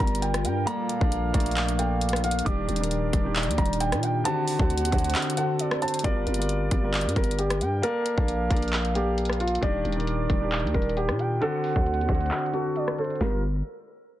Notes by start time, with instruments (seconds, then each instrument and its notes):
Already playing: ambient pad G3 F4 A#4, grand piano G3 F4 A#4, soft synth lead D5
0.00 808-style bass G1, felt piano A#5, kick
0.07 closed hi-hat
0.15 closed hi-hat
0.22 felt piano G5, closed hi-hat
0.34 cross-stick, closed hi-hat
0.44 808-style bass G2, soft synth lead G5, closed hi-hat
0.66 ambient pad A#2 F3 D4, grand piano A#3 A4 D5, soft synth lead F5, felt piano A#5, closed hi-hat
0.89 closed hi-hat
1.00 808-style bass A#1, grand piano A#3 A4 D5, kick
1.12 closed hi-hat
1.33 808-style bass A#1, grand piano A3 A#3 D5, kick, closed hi-hat
1.40 closed hi-hat
1.46 closed hi-hat
1.51 closed hi-hat
1.57 clap, closed hi-hat
1.68 closed hi-hat
1.78 grand piano A#3 A4 D5, felt piano G5, closed hi-hat
2.01 closed hi-hat
2.09 closed hi-hat
2.13 cross-stick, closed hi-hat
2.24 felt piano F5, closed hi-hat
2.31 closed hi-hat
2.39 closed hi-hat
2.45 808-style bass D#1, grand piano D#3 D4 G4, ambient pad D#3 G4, soft synth lead D5, felt piano D6, kick, closed hi-hat
2.69 808-style bass D#1, closed hi-hat
2.76 grand piano D#3, closed hi-hat
2.80 grand piano D4 A#4, closed hi-hat
2.91 closed hi-hat
3.13 808-style bass D#1, kick, closed hi-hat
3.24 grand piano D#3 D4 G4
3.36 clap, closed hi-hat
3.43 closed hi-hat
3.48 808-style bass D#2, closed hi-hat
3.58 808-style bass D#1, felt piano A#5, kick, closed hi-hat
3.66 closed hi-hat
3.73 closed hi-hat
3.80 felt piano G5, closed hi-hat
3.92 808-style bass A#2, cross-stick, closed hi-hat
4.03 soft synth lead G5, closed hi-hat
4.24 grand piano D3 C4 F#4, ambient pad D3 C4 F#4, soft synth lead F#5, felt piano A5, closed hi-hat
4.48 open hi-hat
4.58 808-style bass D2, grand piano D3 C4 F#4, kick
4.70 closed hi-hat
4.78 closed hi-hat
4.82 808-style bass D#2, closed hi-hat
4.91 808-style bass D2, grand piano D3 C4 F#4, kick, closed hi-hat
4.98 closed hi-hat
5.04 closed hi-hat
5.10 closed hi-hat
5.15 clap, closed hi-hat
5.22 closed hi-hat
5.30 closed hi-hat
5.36 grand piano D3 C4 A4, felt piano F#5, closed hi-hat
5.59 soft synth lead D5, closed hi-hat
5.71 cross-stick
5.82 soft synth lead C5, felt piano A5, closed hi-hat
5.88 closed hi-hat
5.94 closed hi-hat
5.99 grand piano G3, closed hi-hat
6.04 808-style bass G1, grand piano F4 A#4, soft synth lead D5, felt piano D5, kick, closed hi-hat
6.27 808-style bass G1, closed hi-hat
6.34 grand piano G3, closed hi-hat
6.39 grand piano F4 A#4, closed hi-hat
6.49 closed hi-hat
6.71 808-style bass G1, kick, closed hi-hat
6.82 grand piano G3 F4 A#4
6.94 clap, closed hi-hat
7.01 closed hi-hat
7.06 808-style bass G2, closed hi-hat
7.16 808-style bass G1, felt piano A#4, kick, closed hi-hat
7.24 closed hi-hat
7.31 closed hi-hat
7.39 felt piano G4, closed hi-hat
7.50 cross-stick, closed hi-hat
7.61 808-style bass G2, soft synth lead G5, closed hi-hat
7.82 grand piano A#3 A4 D5, felt piano A#4, soft synth lead F5, closed hi-hat
8.06 closed hi-hat
8.16 808-style bass A#1, grand piano A#3 A4 D5, kick
8.28 closed hi-hat
8.50 808-style bass A#1, grand piano A#3 A#4 D5, kick, closed hi-hat
8.57 closed hi-hat
8.62 closed hi-hat
8.68 closed hi-hat
8.73 clap, closed hi-hat
8.85 closed hi-hat
8.94 grand piano A#3 A4 D5, felt piano G4, closed hi-hat
9.18 closed hi-hat
9.25 closed hi-hat
9.30 cross-stick, closed hi-hat
9.40 felt piano F4, closed hi-hat
9.48 closed hi-hat
9.55 closed hi-hat
9.61 808-style bass D#1, grand piano D#3 D4 G4, soft synth lead D5, felt piano D5, kick, closed hi-hat
9.85 808-style bass D#1, closed hi-hat
9.92 grand piano D#3, closed hi-hat
9.97 grand piano D4 A#4, closed hi-hat
10.07 closed hi-hat
10.30 808-style bass D#1, kick, closed hi-hat
10.40 grand piano D#3 D4 G4
10.52 clap, closed hi-hat
10.60 closed hi-hat
10.64 808-style bass D#2, closed hi-hat
10.74 808-style bass D#1, felt piano A#4, kick, closed hi-hat
10.82 closed hi-hat
10.89 closed hi-hat
10.97 felt piano G4, closed hi-hat
11.09 808-style bass A#2, cross-stick, closed hi-hat
11.19 soft synth lead G5, closed hi-hat
11.41 grand piano D3 C4 F#4, felt piano A4, soft synth lead F#5, closed hi-hat
11.64 open hi-hat
11.76 808-style bass D2, grand piano C4 F#4, kick
11.86 closed hi-hat
11.94 closed hi-hat
11.98 808-style bass D#2, closed hi-hat
12.08 808-style bass D2, grand piano D3 C4 F#4, kick, closed hi-hat
12.15 closed hi-hat
12.21 closed hi-hat
12.26 closed hi-hat
12.31 clap, closed hi-hat
12.39 closed hi-hat
12.46 closed hi-hat
12.52 grand piano D3 C4 A4, felt piano F#4, closed hi-hat
12.76 soft synth lead D5, closed hi-hat
12.88 cross-stick
12.98 felt piano A4, soft synth lead C5, closed hi-hat
13.04 closed hi-hat
13.10 closed hi-hat
13.15 closed hi-hat
13.21 808-style bass G1, grand piano G3 F4 A#4, soft synth lead A#4, felt piano A#4, snare